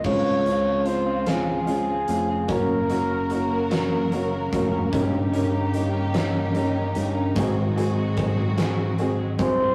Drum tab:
CC |x-----|------|------|------|
HH |-xxxxx|xxxxxx|xxxxxx|xxxxxx|
SD |---o--|---o--|---o--|---o--|
BD |o-----|o----o|o-----|o-o--o|